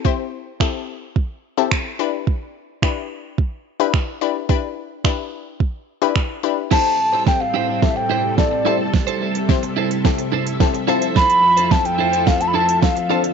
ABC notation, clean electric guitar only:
X:1
M:4/4
L:1/16
Q:1/4=108
K:C
V:1 name="Clean electric guitar"
z16 | z16 | z16 | [EGc]2 z [EGc] z2 [EGc] [EGc] z2 [EGc] z3 [EAc] z |
z [EAc] [EAc] z3 [EAc] z3 [EAc] z3 [EAc] [EAc] | [EAc]2 z [EAc] z2 [EAc] [EAc] z2 [EAc] z3 [FAc] z |]